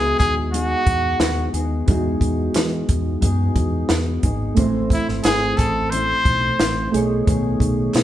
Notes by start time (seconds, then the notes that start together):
Already playing: C#2 F#3 G#3 B3 D#4 E4 F#4 G#4 D#5
0.19 D#2 G#4, kick, clap, closed hi-hat
0.53 F#3 B3 D#4 F#4 G#4, closed hi-hat
0.87 E2, kick, closed hi-hat
1.20 D#2, snare, clap, closed hi-hat
1.54 D#2 B3 D#4 G#4, closed hi-hat
1.86 E2 E3 F#3 G#3 B3 D#4, kick, closed hi-hat
1.90 F#4 G#4
2.21 E2, kick, closed hi-hat
2.54 E3, snare, clap, closed hi-hat
2.89 E2, kick, closed hi-hat
3.21 F#2 F#3 B3 D#4 G#4, kick, closed hi-hat
3.55 E2, kick, closed hi-hat
3.89 E2, snare, clap, closed hi-hat
4.23 G#1 B3 D#4 G#4, kick, closed hi-hat
4.55 A1 A3 C4 E4, kick, closed hi-hat
4.59 E3 A3 C4 E4 C5
4.90 E4, kick, closed hi-hat
5.09 G#1, snare
5.24 G#1 G#4, snare, clap, closed hi-hat
5.57 A1 A4, kick, clap, closed hi-hat
5.90 E3 A3 C5, closed hi-hat
5.94 C4 E4
6.25 B1, kick, closed hi-hat
6.60 A1, snare, clap, closed hi-hat
6.92 B1 A3 B3 D#4 G#4, closed hi-hat
6.96 A3 C#5
7.25 B1 B2 D#3 A3 B3 D#4, kick, closed hi-hat
7.30 G#4
7.60 B1, kick, closed hi-hat
7.94 B2, snare, clap, closed hi-hat